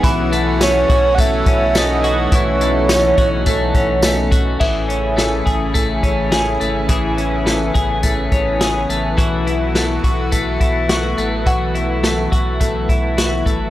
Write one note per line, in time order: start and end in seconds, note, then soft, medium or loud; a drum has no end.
0.00 0.85 B1 loud
0.00 4.56 E3 medium
0.00 2.32 E3 medium
0.00 4.57 A3 medium
0.00 0.32 B3 medium
0.00 4.56 B3 medium
0.00 2.30 C#4 medium
0.00 4.57 F#4 medium
0.00 kick loud
0.00 closed hi-hat medium
0.04 1.90 B5 medium
0.32 1.18 A3 medium
0.32 closed hi-hat medium
0.61 1.47 C#4 medium
0.61 1.16 C#5 loud
0.61 snare loud
0.61 closed hi-hat medium
0.61 tambourine medium
0.89 1.44 B1 medium
0.89 2.03 F#4 medium
0.89 kick medium
0.89 closed hi-hat soft
1.15 1.75 A3 medium
1.15 1.21 F#5 medium
1.15 kick medium
1.15 closed hi-hat medium
1.20 1.76 E5 loud
1.46 2.28 B1 medium
1.46 2.89 C#4 medium
1.46 kick loud
1.46 closed hi-hat soft
1.75 2.61 A3 medium
1.75 2.36 D#5 loud
1.75 snare loud
1.75 closed hi-hat medium
1.75 tambourine medium
2.04 3.17 F#4 medium
2.04 closed hi-hat soft
2.32 3.14 B1 loud
2.32 4.59 E3 medium
2.32 4.59 D#4 medium
2.32 4.05 C#5 loud
2.32 kick loud
2.32 closed hi-hat medium
2.61 3.46 A3 medium
2.61 closed hi-hat soft
2.89 3.75 C#4 medium
2.89 snare loud
2.89 closed hi-hat medium
2.89 tambourine medium
3.18 3.72 B1 loud
3.18 4.30 F#4 medium
3.18 kick medium
3.18 closed hi-hat soft
3.46 4.03 A3 medium
3.46 kick medium
3.46 closed hi-hat medium
3.74 4.57 B1 loud
3.74 4.88 C#4 medium
3.74 kick medium
3.74 closed hi-hat soft
4.02 5.17 A3 medium
4.02 snare loud
4.02 closed hi-hat medium
4.02 tambourine medium
4.32 4.60 F#4 medium
4.32 kick loud
4.32 closed hi-hat medium
4.60 5.42 A1 loud
4.60 9.14 C#3 medium
4.60 6.89 E3 medium
4.60 9.14 E3 medium
4.60 6.88 A3 medium
4.60 9.14 E4 medium
4.60 5.45 G#4 medium
4.60 9.15 G#4 medium
4.60 6.47 E5 medium
4.60 kick medium
4.60 crash medium
4.89 6.02 C#4 medium
4.89 closed hi-hat soft
5.17 5.74 A3 medium
5.17 snare medium
5.17 closed hi-hat medium
5.46 6.01 A1 medium
5.46 6.31 G#4 medium
5.46 kick medium
5.46 closed hi-hat soft
5.74 6.60 A3 medium
5.74 kick medium
5.74 closed hi-hat medium
6.03 6.58 A1 medium
6.03 7.16 C#4 medium
6.03 kick medium
6.03 closed hi-hat soft
6.32 6.88 G#4 medium
6.32 snare loud
6.32 closed hi-hat medium
6.61 6.88 G#1 medium
6.61 7.46 A3 medium
6.61 closed hi-hat soft
6.89 7.71 A1 loud
6.89 9.17 E3 medium
6.89 13.70 B3 medium
6.89 7.73 G#4 medium
6.89 kick medium
6.89 closed hi-hat medium
7.18 8.31 C#4 medium
7.18 closed hi-hat soft
7.46 8.03 A3 medium
7.46 snare medium
7.46 closed hi-hat medium
7.74 8.29 A1 medium
7.74 8.60 G#4 medium
7.74 kick medium
7.74 closed hi-hat soft
8.03 8.89 A3 medium
8.03 kick medium
8.03 closed hi-hat medium
8.32 8.86 A1 medium
8.32 9.24 C#4 medium
8.32 kick medium
8.32 closed hi-hat soft
8.61 9.18 G#4 medium
8.61 snare loud
8.61 closed hi-hat medium
8.89 9.17 A1 medium
8.89 9.75 A3 medium
8.89 closed hi-hat soft
9.17 10.00 B1 loud
9.17 13.70 E3 medium
9.17 11.46 E3 medium
9.17 13.70 F#3 medium
9.17 13.70 A3 medium
9.17 11.44 F#4 medium
9.17 10.03 F#4 medium
9.17 kick loud
9.17 closed hi-hat medium
9.47 10.60 E4 medium
9.47 closed hi-hat soft
9.75 10.32 A3 medium
9.75 snare medium
9.75 closed hi-hat medium
10.04 10.58 B1 loud
10.04 10.88 F#4 medium
10.04 kick medium
10.04 closed hi-hat soft
10.32 11.18 A3 medium
10.32 kick medium
10.32 closed hi-hat medium
10.60 11.15 B1 medium
10.60 11.74 E4 medium
10.60 kick medium
10.60 closed hi-hat soft
10.89 11.46 F#4 medium
10.89 snare loud
10.89 closed hi-hat medium
11.18 11.45 A1 medium
11.18 12.03 A3 medium
11.18 closed hi-hat soft
11.46 12.28 B1 medium
11.46 13.70 E3 medium
11.46 13.70 E4 medium
11.46 12.31 F#4 medium
11.46 13.33 F#5 medium
11.46 kick medium
11.46 closed hi-hat medium
11.75 12.89 E4 medium
11.75 closed hi-hat soft
12.04 12.60 A3 medium
12.04 snare medium
12.04 closed hi-hat medium
12.32 12.86 B1 medium
12.32 13.17 F#4 medium
12.32 kick medium
12.32 closed hi-hat soft
12.60 13.45 A3 medium
12.60 kick medium
12.60 closed hi-hat medium
12.89 13.43 B1 medium
12.89 13.70 E4 medium
12.89 kick medium
12.89 closed hi-hat soft
13.18 13.70 F#4 medium
13.18 snare loud
13.18 closed hi-hat medium
13.46 13.70 G#1 medium
13.46 13.70 A3 soft
13.46 kick medium
13.46 closed hi-hat soft